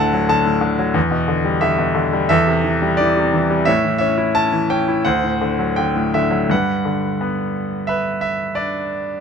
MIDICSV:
0, 0, Header, 1, 2, 480
1, 0, Start_track
1, 0, Tempo, 676437
1, 683, Time_signature, 4, 2, 24, 8
1, 3094, Tempo, 717703
1, 4534, Tempo, 688073
1, 6410, End_track
2, 0, Start_track
2, 0, Title_t, "Grand piano"
2, 0, Program_c, 0, 0
2, 0, Control_c, 0, 64, 127
2, 0, Note_on_c, 0, 38, 62
2, 0, Note_on_c, 0, 45, 44
2, 0, Note_on_c, 0, 50, 49
2, 0, Note_on_c, 0, 69, 62
2, 0, Note_on_c, 0, 78, 87
2, 0, Note_on_c, 0, 81, 83
2, 94, Note_on_c, 0, 54, 49
2, 194, Note_off_c, 0, 50, 0
2, 198, Note_off_c, 0, 81, 0
2, 205, Note_on_c, 0, 50, 51
2, 208, Note_on_c, 0, 81, 83
2, 311, Note_off_c, 0, 45, 0
2, 321, Note_on_c, 0, 45, 50
2, 424, Note_off_c, 0, 50, 0
2, 434, Note_on_c, 0, 50, 54
2, 539, Note_off_c, 0, 81, 0
2, 549, Note_off_c, 0, 54, 0
2, 560, Note_on_c, 0, 54, 51
2, 655, Note_off_c, 0, 69, 0
2, 656, Note_off_c, 0, 38, 0
2, 667, Note_on_c, 0, 40, 68
2, 668, Note_off_c, 0, 45, 0
2, 669, Note_off_c, 0, 50, 0
2, 677, Note_off_c, 0, 54, 0
2, 693, Control_c, 0, 64, 0
2, 695, Note_off_c, 0, 78, 0
2, 787, Note_on_c, 0, 47, 48
2, 801, Control_c, 0, 64, 127
2, 909, Note_on_c, 0, 50, 52
2, 1025, Note_on_c, 0, 55, 50
2, 1136, Note_off_c, 0, 50, 0
2, 1142, Note_on_c, 0, 76, 71
2, 1147, Note_on_c, 0, 50, 56
2, 1256, Note_off_c, 0, 47, 0
2, 1267, Note_on_c, 0, 47, 47
2, 1372, Note_off_c, 0, 50, 0
2, 1382, Note_on_c, 0, 50, 54
2, 1503, Note_off_c, 0, 55, 0
2, 1513, Note_on_c, 0, 55, 56
2, 1602, Note_off_c, 0, 40, 0
2, 1614, Note_off_c, 0, 76, 0
2, 1622, Note_off_c, 0, 47, 0
2, 1623, Note_off_c, 0, 50, 0
2, 1625, Note_on_c, 0, 76, 84
2, 1632, Note_off_c, 0, 55, 0
2, 1632, Note_on_c, 0, 40, 69
2, 1638, Note_on_c, 0, 69, 57
2, 1647, Control_c, 0, 64, 0
2, 1751, Note_on_c, 0, 48, 50
2, 1758, Control_c, 0, 64, 127
2, 1874, Note_on_c, 0, 52, 52
2, 2002, Note_on_c, 0, 55, 51
2, 2108, Note_on_c, 0, 74, 75
2, 2117, Note_off_c, 0, 52, 0
2, 2128, Note_on_c, 0, 52, 51
2, 2134, Note_off_c, 0, 76, 0
2, 2238, Note_off_c, 0, 48, 0
2, 2249, Note_on_c, 0, 48, 47
2, 2360, Note_off_c, 0, 52, 0
2, 2370, Note_on_c, 0, 52, 54
2, 2476, Note_off_c, 0, 55, 0
2, 2487, Note_on_c, 0, 55, 51
2, 2573, Note_off_c, 0, 74, 0
2, 2579, Note_off_c, 0, 40, 0
2, 2582, Note_off_c, 0, 69, 0
2, 2593, Note_on_c, 0, 76, 83
2, 2600, Note_off_c, 0, 48, 0
2, 2603, Note_off_c, 0, 52, 0
2, 2605, Note_off_c, 0, 55, 0
2, 2606, Note_on_c, 0, 45, 62
2, 2606, Note_on_c, 0, 73, 53
2, 2620, Control_c, 0, 64, 0
2, 2729, Note_on_c, 0, 52, 42
2, 2732, Control_c, 0, 64, 127
2, 2817, Note_off_c, 0, 76, 0
2, 2827, Note_on_c, 0, 76, 76
2, 2845, Note_on_c, 0, 61, 49
2, 2963, Note_on_c, 0, 64, 49
2, 3065, Note_off_c, 0, 76, 0
2, 3076, Note_off_c, 0, 61, 0
2, 3085, Note_on_c, 0, 81, 91
2, 3087, Note_on_c, 0, 61, 50
2, 3194, Note_off_c, 0, 52, 0
2, 3204, Note_on_c, 0, 52, 49
2, 3313, Note_off_c, 0, 61, 0
2, 3322, Note_on_c, 0, 79, 77
2, 3323, Note_on_c, 0, 61, 51
2, 3331, Note_off_c, 0, 81, 0
2, 3432, Note_off_c, 0, 64, 0
2, 3442, Note_on_c, 0, 64, 47
2, 3538, Note_off_c, 0, 45, 0
2, 3538, Note_off_c, 0, 73, 0
2, 3553, Note_off_c, 0, 52, 0
2, 3553, Note_on_c, 0, 78, 73
2, 3557, Note_off_c, 0, 61, 0
2, 3557, Note_on_c, 0, 38, 61
2, 3561, Note_off_c, 0, 64, 0
2, 3562, Note_on_c, 0, 72, 53
2, 3571, Note_off_c, 0, 79, 0
2, 3575, Control_c, 0, 64, 0
2, 3678, Note_on_c, 0, 45, 44
2, 3687, Control_c, 0, 64, 127
2, 3799, Note_on_c, 0, 50, 43
2, 3917, Note_on_c, 0, 54, 45
2, 4032, Note_on_c, 0, 79, 76
2, 4036, Note_off_c, 0, 50, 0
2, 4046, Note_on_c, 0, 50, 44
2, 4151, Note_off_c, 0, 45, 0
2, 4161, Note_on_c, 0, 45, 44
2, 4260, Note_off_c, 0, 78, 0
2, 4277, Note_off_c, 0, 50, 0
2, 4285, Note_on_c, 0, 76, 70
2, 4287, Note_on_c, 0, 50, 46
2, 4292, Note_off_c, 0, 79, 0
2, 4389, Note_off_c, 0, 54, 0
2, 4399, Note_on_c, 0, 54, 47
2, 4502, Note_off_c, 0, 38, 0
2, 4505, Note_off_c, 0, 72, 0
2, 4517, Note_off_c, 0, 45, 0
2, 4522, Note_off_c, 0, 54, 0
2, 4523, Note_off_c, 0, 50, 0
2, 4523, Note_on_c, 0, 43, 54
2, 4532, Note_on_c, 0, 78, 61
2, 4535, Note_on_c, 0, 71, 43
2, 4537, Note_off_c, 0, 76, 0
2, 4544, Control_c, 0, 64, 0
2, 4648, Control_c, 0, 64, 127
2, 4770, Note_on_c, 0, 50, 37
2, 5020, Note_on_c, 0, 59, 44
2, 5230, Note_off_c, 0, 78, 0
2, 5471, Note_off_c, 0, 71, 0
2, 5481, Note_on_c, 0, 76, 68
2, 5494, Note_on_c, 0, 71, 49
2, 5704, Note_off_c, 0, 50, 0
2, 5708, Note_off_c, 0, 76, 0
2, 5719, Note_on_c, 0, 76, 65
2, 5948, Note_off_c, 0, 59, 0
2, 5956, Note_on_c, 0, 74, 66
2, 5970, Note_on_c, 0, 62, 44
2, 5975, Note_off_c, 0, 76, 0
2, 6410, Note_off_c, 0, 43, 0
2, 6410, Note_off_c, 0, 62, 0
2, 6410, Note_off_c, 0, 71, 0
2, 6410, Note_off_c, 0, 74, 0
2, 6410, End_track
0, 0, End_of_file